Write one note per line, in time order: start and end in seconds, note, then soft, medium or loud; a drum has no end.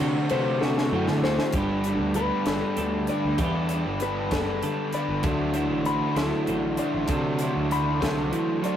0.00 0.16 C3 medium
0.00 0.28 D3 medium
0.00 1.55 D3 medium
0.00 0.31 A3 medium
0.00 0.29 A3 medium
0.00 0.91 C4 medium
0.00 0.30 C4 medium
0.00 0.31 F#4 medium
0.00 0.60 F#4 medium
0.00 0.31 D5 medium
0.29 0.90 C3 medium
0.29 0.92 D3 medium
0.29 0.63 A3 medium
0.29 1.51 A3 medium
0.29 0.61 C4 medium
0.29 0.60 F#4 medium
0.29 1.51 B4 medium
0.29 0.62 C5 medium
0.29 ride medium
0.61 0.92 A3 medium
0.61 0.93 C4 medium
0.61 0.94 F#4 medium
0.61 1.24 F#4 medium
0.61 1.23 A4 medium
0.61 snare medium
0.78 snare medium
0.91 1.07 F#2 medium
0.91 1.50 A2 medium
0.91 1.53 D3 medium
0.91 1.25 A3 medium
0.91 1.51 C4 medium
0.91 1.24 C4 medium
0.91 1.23 F#4 medium
1.08 1.22 D3 loud
1.08 snare medium
1.22 1.38 D2 medium
1.22 1.54 C4 medium
1.22 1.53 F#4 medium
1.22 1.52 F#4 medium
1.22 1.55 C5 medium
1.22 snare medium
1.27 1.54 A3 medium
1.39 snare medium
1.52 2.01 G1 medium
1.52 3.40 G2 medium
1.52 2.50 G3 medium
1.52 2.16 B3 medium
1.52 1.88 D4 medium
1.52 1.70 G4 medium
1.52 kick loud
1.52 closed hi-hat medium
1.57 1.86 G4 medium
1.57 1.85 B4 medium
1.70 2.76 A4 medium
1.84 2.18 G4 medium
1.84 2.19 B4 medium
1.84 closed hi-hat medium
1.88 2.17 D4 medium
2.01 2.30 D2 medium
2.14 4.67 G3 medium
2.14 4.67 B3 medium
2.14 2.50 B3 medium
2.14 2.48 D4 medium
2.14 2.47 B4 medium
2.14 closed hi-hat medium
2.18 2.48 G4 medium
2.18 2.47 B4 medium
2.46 2.62 G1 medium
2.46 3.11 D4 medium
2.46 3.09 G4 medium
2.46 3.09 A4 medium
2.46 3.08 B4 medium
2.46 snare medium
2.46 closed hi-hat medium
2.50 3.39 G3 medium
2.50 3.39 B3 medium
2.77 3.07 D2 loud
2.77 3.39 D3 medium
2.77 3.38 A4 medium
2.77 closed hi-hat medium
3.07 3.40 G4 medium
3.07 3.42 B4 medium
3.07 3.40 D5 medium
3.07 closed hi-hat medium
3.12 3.40 D4 medium
3.25 3.39 D2 medium
3.38 3.83 E2 loud
3.38 4.34 G3 medium
3.38 4.00 B3 medium
3.38 3.73 D4 medium
3.38 3.55 G4 medium
3.38 3.72 G4 medium
3.38 kick loud
3.38 closed hi-hat medium
3.42 3.70 B4 loud
3.55 4.62 A4 medium
3.69 4.02 G4 medium
3.69 4.04 B4 medium
3.69 closed hi-hat medium
3.74 4.01 D4 medium
3.86 4.32 G1 medium
4.00 4.33 B3 medium
4.00 4.33 D4 medium
4.00 4.32 G4 medium
4.00 4.33 B4 medium
4.00 closed hi-hat medium
4.04 4.31 B4 medium
4.31 4.61 F#1 medium
4.31 5.23 G3 medium
4.31 5.24 B3 medium
4.31 4.95 D4 medium
4.31 4.94 G4 medium
4.31 4.94 A4 medium
4.31 4.93 B4 medium
4.31 kick medium
4.31 snare loud
4.31 closed hi-hat medium
4.63 5.22 D3 medium
4.63 6.48 A4 medium
4.63 closed hi-hat medium
4.93 5.25 D4 medium
4.93 5.25 G4 medium
4.93 5.26 B4 medium
4.93 5.25 D5 medium
4.93 closed hi-hat medium
5.09 5.24 G1 medium
5.23 5.70 D2 medium
5.23 5.90 D3 medium
5.23 7.08 D3 medium
5.23 5.86 F#3 medium
5.23 5.57 A3 medium
5.23 5.56 D4 medium
5.23 5.54 F#4 medium
5.23 5.54 C5 medium
5.23 kick loud
5.23 closed hi-hat medium
5.54 5.83 A3 medium
5.54 5.85 D4 medium
5.54 6.16 E4 medium
5.54 5.86 F#4 medium
5.54 5.87 C5 medium
5.54 closed hi-hat medium
5.70 6.00 A1 medium
5.84 6.17 A3 medium
5.84 6.17 D4 medium
5.84 6.15 F#4 medium
5.84 6.14 C5 medium
5.84 6.17 B5 medium
5.84 closed hi-hat medium
6.15 6.31 D2 medium
6.15 7.07 D3 medium
6.15 7.08 F#3 medium
6.15 6.80 A3 medium
6.15 6.79 D4 medium
6.15 7.05 E4 medium
6.15 6.78 F#4 medium
6.15 6.79 A4 medium
6.15 6.77 C5 medium
6.15 snare loud
6.15 closed hi-hat medium
6.47 6.78 A1 medium
6.47 7.06 A2 medium
6.47 7.06 C5 medium
6.47 closed hi-hat medium
6.77 7.09 A3 medium
6.77 7.09 D4 medium
6.77 7.09 F#4 medium
6.77 7.10 C5 medium
6.77 7.10 D5 medium
6.77 closed hi-hat medium
6.94 7.08 A1 medium
7.08 7.53 C3 loud
7.08 7.70 D3 medium
7.08 8.00 D3 medium
7.08 7.71 F#3 medium
7.08 7.42 A3 loud
7.08 7.41 D4 loud
7.08 7.40 F#4 loud
7.08 7.39 C5 medium
7.08 kick loud
7.08 closed hi-hat medium
7.39 7.69 A3 medium
7.39 7.70 D4 medium
7.39 8.77 E4 medium
7.39 7.71 F#4 medium
7.39 7.72 C5 medium
7.39 closed hi-hat medium
7.56 8.03 D2 medium
7.69 8.02 A3 medium
7.69 8.01 D4 medium
7.69 7.99 F#4 medium
7.69 7.99 C5 medium
7.69 8.02 B5 medium
7.69 closed hi-hat medium
8.00 8.32 C2 medium
8.00 8.32 D3 medium
8.00 8.77 D3 medium
8.00 8.77 F#3 medium
8.00 8.65 A3 medium
8.00 8.65 D4 medium
8.00 8.63 F#4 medium
8.00 8.64 A4 medium
8.00 8.62 C5 medium
8.00 kick medium
8.00 snare loud
8.00 closed hi-hat medium
8.32 8.62 E3 medium
8.32 closed hi-hat medium
8.62 8.77 F#3 medium
8.62 8.77 A3 medium
8.62 8.77 D4 medium
8.62 8.77 F#4 medium
8.62 8.77 C5 medium
8.62 8.77 D5 medium
8.62 closed hi-hat medium